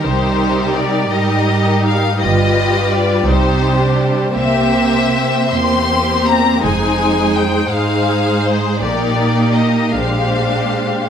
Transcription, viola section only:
\new Staff \with { instrumentName = "Viola section" } { \time 6/8 \key c \minor \tempo 4. = 55 << { ees'4. ees'4. | f'4. ees'8. d'8. | c'4. c'4. | ees'4. ees'4. |
ees'4. d'4. | } \\ { g4. g4. | g4. g4. | bes4. bes4. | aes4. aes4. |
bes4. aes4. | } >> }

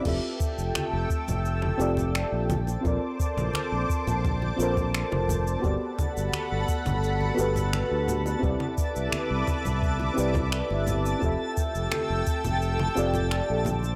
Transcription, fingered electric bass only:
\new Staff \with { instrumentName = "Fingered electric bass" } { \clef bass \time 4/4 \key f \major \tempo 4 = 86 f,,16 r8 f,,16 r16 f,,16 r16 f,,8 r16 f,,8 r16 bes,,8 r16 | bes,,16 r8 bes,,16 r16 bes,,16 r16 bes,,8 r16 bes,,8 r16 f,,8 r16 | g,,16 r8 g,,16 r16 g,,16 r16 g,,8 r16 g,,8 r16 d,8 r16 | c,16 r8 c,16 r16 c,16 r16 c,8 r16 c,8 r16 g,,8 r16 |
f,,16 r8 f,,16 r16 f,,16 r16 f,,8 r16 f,,8 r16 bes,,8 r16 | }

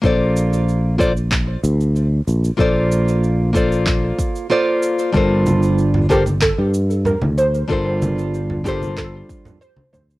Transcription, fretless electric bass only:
\new Staff \with { instrumentName = "Fretless electric bass" } { \clef bass \time 4/4 \key bes \major \tempo 4 = 94 bes,,2~ bes,,16 r16 d,8. r16 bes,,16 r16 | bes,,2~ bes,,16 r4. r16 | g,,2 r16 g,8. r16 d,8 r16 | g,,2~ g,,16 r4 r16 d,16 r16 | }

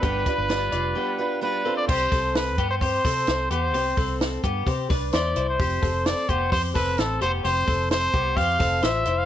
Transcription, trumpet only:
\new Staff \with { instrumentName = "Trumpet" } { \time 4/4 \key c \major \tempo 4 = 130 b'2. b'8. d''16 | c''4 b'8. c''16 c''4. c''8~ | c''4 r2 d''8. c''16~ | c''4 d''8 c''8 c''8 b'8 a'8 c''8 |
c''4 c''4 f''4 e''8. f''16 | }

